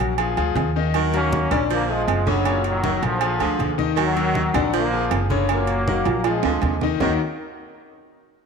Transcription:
0.00 0.34 A#1 loud
0.00 0.12 F#3 medium
0.00 0.12 F#4 medium
0.00 0.12 A#4 medium
0.00 low agogo medium
0.18 0.34 F3 medium
0.18 0.34 F4 medium
0.18 0.35 G#4 medium
0.18 high conga soft
0.18 low agogo loud
0.37 0.55 D2 medium
0.37 0.68 F3 medium
0.37 0.69 F4 medium
0.37 0.69 G#4 medium
0.37 high conga soft
0.37 low agogo medium
0.55 1.45 D#2 loud
0.55 high conga medium
0.55 low timbale medium
0.55 low agogo medium
0.76 0.91 D#3 medium
0.76 0.91 D#4 medium
0.76 0.91 D#5 medium
0.94 1.40 D#3 loud
0.94 1.10 F#3 medium
0.94 1.10 F#4 medium
0.94 1.11 A#4 medium
0.94 high conga soft
0.94 low agogo loud
1.13 1.45 F#3 medium
1.13 1.49 A#3 medium
1.13 1.50 C#4 loud
1.13 1.45 F#4 medium
1.13 1.45 A#4 medium
1.13 high conga soft
1.13 low agogo medium
1.33 high conga loud
1.51 2.04 A#1 loud
1.51 1.82 D3 medium
1.51 1.61 A#3 medium
1.51 1.61 C#4 medium
1.51 1.83 D4 loud
1.51 1.83 D5 loud
1.51 high conga soft
1.51 low conga medium
1.51 low agogo loud
1.70 2.02 F3 loud
1.70 1.88 F3 medium
1.70 1.89 A#3 loud
1.70 high conga soft
1.70 low agogo medium
1.89 2.20 F3 medium
1.89 2.28 F3 medium
1.89 2.28 G#3 loud
1.89 2.20 F4 medium
1.89 2.20 G#4 medium
1.89 high conga soft
2.08 2.97 F#1 loud
2.08 high conga soft
2.08 low timbale medium
2.08 low agogo loud
2.27 2.43 C#3 medium
2.27 2.65 C#3 medium
2.27 2.59 D3 medium
2.27 2.66 F#3 loud
2.27 2.43 C#4 medium
2.27 2.43 C#5 medium
2.27 high conga medium
2.45 2.77 A#2 medium
2.45 2.77 C#4 medium
2.45 2.77 C#5 medium
2.45 high conga soft
2.45 low agogo loud
2.64 3.01 D#3 medium
2.64 3.01 F#3 medium
2.64 high conga soft
2.64 low agogo medium
2.84 3.04 D#3 medium
2.84 3.15 F#3 medium
2.84 3.15 F#4 medium
2.84 3.15 A#4 medium
2.84 high conga loud
3.03 3.38 A#1 loud
3.03 3.75 D3 medium
3.03 3.75 F3 loud
3.03 high conga soft
3.03 low agogo medium
3.21 3.37 F3 medium
3.21 3.37 F4 medium
3.21 3.37 G#4 medium
3.21 high conga soft
3.21 low agogo loud
3.39 3.58 D2 medium
3.39 3.72 D3 medium
3.39 3.72 F3 medium
3.39 3.72 F4 medium
3.39 3.72 G#4 medium
3.39 high conga soft
3.39 low agogo loud
3.59 4.48 D#2 loud
3.59 high conga medium
3.59 low agogo medium
3.78 3.94 D#3 medium
3.78 3.94 D#4 medium
3.78 3.94 D#5 loud
3.78 high conga medium
3.96 4.42 D#3 loud
3.96 4.70 D#3 medium
3.96 4.13 F#3 medium
3.96 4.13 F#4 medium
3.96 4.13 A#4 medium
3.96 high conga soft
3.96 low agogo loud
4.00 4.71 F#3 loud
4.16 4.48 F#3 medium
4.16 4.48 F#4 medium
4.16 4.48 A#4 medium
4.16 high conga soft
4.16 low agogo medium
4.35 high conga medium
4.54 5.07 A#1 loud
4.54 4.86 D3 loud
4.54 4.86 D4 loud
4.54 4.86 D5 medium
4.54 high conga soft
4.54 low conga loud
4.54 low agogo loud
4.73 5.05 F3 loud
4.73 5.19 F3 medium
4.73 5.20 A#3 loud
4.73 high conga soft
4.73 low agogo medium
4.92 5.23 F3 medium
4.92 5.24 F4 medium
4.92 5.24 G#4 medium
4.92 high conga soft
5.11 6.00 F#1 loud
5.11 high conga soft
5.11 low timbale medium
5.11 low agogo loud
5.30 5.46 C#3 medium
5.30 5.62 D3 medium
5.30 5.46 C#4 medium
5.30 5.46 C#5 medium
5.30 high conga medium
5.49 5.81 A#2 medium
5.49 6.22 F#3 medium
5.49 6.22 A#3 loud
5.49 5.81 C#4 medium
5.49 5.81 C#5 medium
5.49 high conga soft
5.49 low agogo loud
5.67 high conga soft
5.67 low agogo medium
5.87 6.07 D#3 medium
5.87 6.19 F#3 medium
5.87 6.19 F#4 medium
5.87 6.19 A#4 medium
5.87 high conga loud
6.05 6.41 A#1 loud
6.05 high conga soft
6.05 high timbale medium
6.05 low agogo medium
6.24 6.41 F3 medium
6.24 6.79 F3 medium
6.24 6.79 G#3 medium
6.24 6.41 F4 medium
6.24 6.42 G#4 medium
6.24 high conga soft
6.24 high timbale medium
6.24 low agogo loud
6.43 6.61 D2 medium
6.43 6.76 D3 medium
6.43 6.75 F3 medium
6.43 6.75 F4 medium
6.43 6.76 G#4 medium
6.43 high conga soft
6.43 low timbale loud
6.43 low agogo medium
6.62 6.96 D#2 medium
6.62 high conga medium
6.62 low timbale medium
6.62 low agogo medium
6.81 6.98 D#3 medium
6.81 6.98 D#4 medium
6.81 6.98 D#5 loud
6.81 high conga medium
6.81 low timbale medium
7.00 7.18 D#2 loud
7.00 7.18 D#3 medium
7.00 7.14 D#3 medium
7.00 7.19 D#3 medium
7.00 7.19 A#3 medium
7.00 7.19 C#4 medium
7.00 7.19 D#4 medium
7.00 7.19 F#4 medium
7.00 7.19 A#4 loud
7.00 low conga loud
7.00 low timbale loud

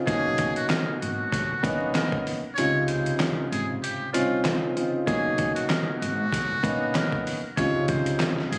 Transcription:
0.06 0.56 B1 loud
0.06 1.52 B2 medium
0.06 1.52 A#3 medium
0.06 1.53 C#4 medium
0.06 1.53 D#4 loud
0.06 0.53 G#4 medium
0.06 kick loud
0.06 closed hi-hat medium
0.38 kick medium
0.38 closed hi-hat medium
0.56 0.69 F#4 medium
0.56 closed hi-hat medium
0.69 0.98 A#4 medium
0.69 snare loud
0.69 clap medium
0.69 closed hi-hat medium
1.00 1.26 G#1 medium
1.00 1.90 F#4 medium
1.00 closed hi-hat medium
1.32 kick medium
1.32 snare soft
1.32 closed hi-hat loud
1.51 muted upright bass stroke soft
1.63 2.02 A#1 medium
1.63 2.36 A#3 medium
1.63 2.36 B3 loud
1.63 2.36 C#4 medium
1.63 2.37 D#4 loud
1.63 kick medium
1.63 closed hi-hat medium
1.94 2.23 A#4 medium
1.94 snare loud
1.94 clap medium
1.94 closed hi-hat medium
2.12 kick medium
2.27 open hi-hat medium
2.55 3.06 C#2 loud
2.55 4.03 C3 medium
2.55 4.03 C#3 medium
2.55 4.03 D#4 medium
2.55 4.03 F4 loud
2.55 2.84 C#5 loud
2.55 closed hi-hat medium
2.87 3.16 C5 medium
2.87 closed hi-hat medium
3.06 closed hi-hat medium
3.20 snare loud
3.20 clap medium
3.20 closed hi-hat medium
3.52 3.76 G#1 loud
3.52 3.67 G#4 medium
3.52 closed hi-hat medium
3.83 4.11 G4 medium
3.83 closed hi-hat loud
4.01 muted upright bass stroke soft
4.13 4.52 C2 medium
4.13 4.72 C4 medium
4.13 4.72 C#4 medium
4.13 4.72 D#4 medium
4.13 4.41 F4 medium
4.13 4.72 F4 loud
4.13 closed hi-hat medium
4.45 snare loud
4.45 clap medium
4.45 closed hi-hat medium
4.75 5.05 C#3 medium
4.75 5.05 C4 medium
4.75 5.05 D#4 medium
4.75 5.05 F4 medium
4.75 closed hi-hat medium
5.07 5.56 B1 loud
5.07 6.53 B2 medium
5.07 6.53 A#3 medium
5.07 6.53 C#4 medium
5.07 6.53 D#4 loud
5.07 5.53 G#4 medium
5.07 kick loud
5.07 closed hi-hat medium
5.38 kick medium
5.38 closed hi-hat medium
5.55 5.68 F#4 medium
5.55 closed hi-hat medium
5.69 5.98 A#4 medium
5.69 snare loud
5.69 clap medium
5.69 closed hi-hat medium
6.00 6.26 G#1 medium
6.00 6.90 F#4 medium
6.00 closed hi-hat medium
6.33 kick medium
6.33 snare soft
6.33 closed hi-hat loud
6.51 muted upright bass stroke soft
6.63 7.02 A#1 medium
6.63 7.36 A#3 medium
6.63 7.36 B3 loud
6.63 7.37 C#4 medium
6.63 7.37 D#4 loud
6.63 kick medium
6.63 closed hi-hat medium
6.95 7.23 A#4 medium
6.95 snare loud
6.95 clap medium
6.95 closed hi-hat medium
7.12 kick medium
7.27 open hi-hat medium
7.57 8.06 C#2 loud
7.57 8.58 C3 medium
7.57 8.58 C#3 medium
7.57 8.58 D#4 medium
7.57 8.58 F4 loud
7.57 7.85 C#5 loud
7.57 kick loud
7.57 closed hi-hat medium
7.88 8.17 C5 medium
7.88 kick medium
7.88 closed hi-hat medium
8.06 closed hi-hat medium
8.20 snare loud
8.20 clap medium
8.20 closed hi-hat medium
8.39 snare soft
8.51 8.58 G#1 loud
8.51 8.58 G#4 medium
8.51 closed hi-hat medium

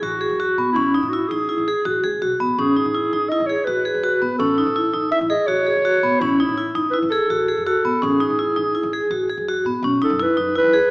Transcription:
0.00 0.24 A1 medium
0.00 0.70 F#4 medium
0.00 0.18 F#4 medium
0.21 0.36 G#4 medium
0.29 0.51 F#2 medium
0.40 0.55 F#4 medium
0.57 0.65 A2 medium
0.57 0.73 B3 medium
0.72 0.97 A1 medium
0.72 1.11 E4 medium
0.76 0.91 C#4 medium
0.95 1.09 D#4 medium
1.03 1.24 A2 medium
1.09 1.30 F#4 medium
1.13 1.28 E4 medium
1.28 1.45 A1 medium
1.28 1.46 D#4 medium
1.28 2.02 G#4 medium
1.49 1.64 E4 medium
1.58 1.72 A1 medium
1.68 1.82 G#4 medium
1.85 2.00 A1 medium
1.85 2.00 F#4 medium
2.03 2.20 C#2 medium
2.03 2.18 G#4 medium
2.22 2.38 B1 medium
2.22 2.37 F#4 medium
2.40 2.56 A1 medium
2.40 2.55 B3 medium
2.58 2.80 A1 medium
2.58 2.73 C#4 medium
2.58 3.30 G#4 medium
2.77 2.91 D#4 medium
2.85 3.07 A2 medium
2.95 3.09 E4 medium
3.13 3.27 A1 medium
3.13 3.28 D#4 medium
3.29 3.46 E4 medium
3.29 3.48 D#5 medium
3.40 3.54 A1 medium
3.46 3.64 G#4 medium
3.46 3.66 C#5 medium
3.65 3.89 A1 medium
3.65 3.82 F#4 medium
3.65 4.38 B4 medium
3.85 4.00 G#4 medium
3.94 4.16 F#2 medium
4.03 4.18 F#4 medium
4.22 4.29 A2 medium
4.22 4.36 B3 medium
4.38 4.61 A1 medium
4.38 4.55 C#4 medium
4.38 5.07 A4 medium
4.58 4.73 D#4 medium
4.67 4.88 A2 medium
4.76 4.91 E4 medium
4.94 5.08 A1 medium
4.94 5.09 D#4 medium
5.11 5.27 E4 medium
5.11 5.20 E5 medium
5.21 5.35 A1 medium
5.30 5.45 G#4 medium
5.30 5.48 D#5 medium
5.47 5.70 A1 medium
5.47 5.63 F#4 medium
5.47 6.21 C#5 medium
5.67 5.82 G#4 medium
5.76 5.97 D#2 medium
5.85 6.00 F#4 medium
6.03 6.10 A2 medium
6.03 6.18 B3 medium
6.20 6.43 A1 medium
6.20 6.36 C#4 medium
6.20 6.75 E4 medium
6.40 6.54 D#4 medium
6.49 6.70 A2 medium
6.58 6.72 E4 medium
6.75 6.90 A1 medium
6.75 6.90 D#4 medium
6.90 7.08 E4 medium
6.90 6.99 B4 medium
7.02 7.17 A1 medium
7.10 7.27 G#4 medium
7.10 7.61 A4 medium
7.30 7.51 A1 medium
7.30 7.45 F#4 medium
7.48 7.63 G#4 medium
7.57 7.79 F#2 medium
7.65 7.81 F#4 medium
7.65 8.03 A4 medium
7.84 7.91 A2 medium
7.84 7.99 B3 medium
8.02 8.24 A1 medium
8.02 8.17 C#4 medium
8.02 9.47 G#4 medium
8.20 8.35 D#4 medium
8.30 8.51 A2 medium
8.39 8.53 E4 medium
8.56 8.71 A1 medium
8.56 8.71 D#4 medium
8.75 8.90 E4 medium
8.83 8.98 A1 medium
8.93 9.08 G#4 medium
9.10 9.32 A1 medium
9.10 9.26 F#4 medium
9.30 9.44 G#4 medium
9.37 9.59 F#2 medium
9.49 9.63 F#4 medium
9.65 9.72 A2 medium
9.65 9.81 B3 medium
9.83 9.97 B1 medium
9.83 9.99 C#4 medium
10.02 10.16 D#4 medium
10.02 10.24 A4 medium
10.10 10.24 F#2 medium
10.20 10.34 E4 medium
10.20 10.57 B4 medium
10.37 10.59 F#2 medium
10.37 10.52 D#4 medium
10.55 10.70 E4 medium
10.55 10.91 B4 medium
10.64 10.79 F#2 medium
10.74 10.88 G#4 medium

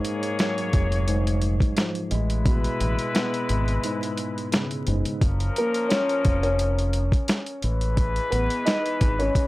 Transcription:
0.00 1.07 G#2 loud
0.00 1.72 A#3 medium
0.00 1.72 G#4 medium
0.00 1.72 C#5 loud
0.05 closed hi-hat medium
0.23 closed hi-hat medium
0.39 2.11 F#3 medium
0.39 snare loud
0.39 closed hi-hat medium
0.58 closed hi-hat medium
0.73 1.57 F1 loud
0.73 kick loud
0.73 closed hi-hat medium
0.92 closed hi-hat soft
1.08 2.11 G#2 loud
1.08 closed hi-hat loud
1.27 closed hi-hat medium
1.42 closed hi-hat medium
1.60 kick loud
1.60 closed hi-hat soft
1.77 2.11 F3 medium
1.77 snare loud
1.77 closed hi-hat loud
1.95 closed hi-hat medium
2.11 2.66 A1 loud
2.11 3.83 G#3 medium
2.11 4.83 G#3 medium
2.11 4.83 E4 medium
2.11 4.83 B4 loud
2.11 closed hi-hat medium
2.30 closed hi-hat medium
2.45 4.18 B2 loud
2.45 kick loud
2.45 closed hi-hat loud
2.64 closed hi-hat medium
2.81 2.96 A1 loud
2.81 closed hi-hat medium
2.99 closed hi-hat medium
3.14 4.87 B3 medium
3.14 snare loud
3.14 closed hi-hat medium
3.34 closed hi-hat medium
3.49 3.77 G#1 loud
3.49 closed hi-hat medium
3.68 closed hi-hat soft
3.84 4.86 G#2 loud
3.84 closed hi-hat medium
4.03 closed hi-hat medium
4.17 closed hi-hat medium
4.38 closed hi-hat soft
4.52 5.21 C#3 medium
4.52 snare loud
4.52 closed hi-hat loud
4.71 closed hi-hat medium
4.87 5.02 F#1 medium
4.87 5.21 G#2 medium
4.87 closed hi-hat medium
5.05 closed hi-hat medium
5.21 5.49 F#1 loud
5.21 7.25 F3 medium
5.21 7.25 C#4 loud
5.21 7.25 A#4 loud
5.21 kick loud
5.21 closed hi-hat loud
5.40 closed hi-hat medium
5.56 5.89 A#3 medium
5.56 5.88 A#4 medium
5.56 closed hi-hat medium
5.74 closed hi-hat medium
5.89 6.40 C#4 medium
5.89 6.40 C#5 medium
5.89 snare loud
5.89 closed hi-hat medium
6.09 closed hi-hat medium
6.25 7.09 F1 loud
6.25 kick loud
6.25 closed hi-hat medium
6.43 7.93 C#4 medium
6.43 7.93 C#5 medium
6.43 closed hi-hat soft
6.59 closed hi-hat medium
6.79 closed hi-hat medium
6.93 closed hi-hat medium
7.12 kick loud
7.12 closed hi-hat soft
7.28 snare loud
7.28 closed hi-hat loud
7.46 closed hi-hat soft
7.62 8.18 A1 loud
7.62 9.47 E3 medium
7.62 9.47 G#3 medium
7.62 9.47 B4 loud
7.62 closed hi-hat medium
7.81 closed hi-hat medium
7.97 kick loud
7.97 closed hi-hat loud
8.16 closed hi-hat medium
8.30 8.47 A1 loud
8.30 8.63 B3 medium
8.30 8.62 B4 medium
8.30 closed hi-hat medium
8.50 closed hi-hat medium
8.65 9.16 D#4 medium
8.65 9.16 D#5 medium
8.65 snare loud
8.65 closed hi-hat medium
8.86 closed hi-hat medium
9.01 9.28 G#1 medium
9.01 kick loud
9.01 closed hi-hat medium
9.19 9.47 C#4 medium
9.19 9.47 C#5 medium
9.19 closed hi-hat soft
9.35 kick loud
9.35 closed hi-hat loud

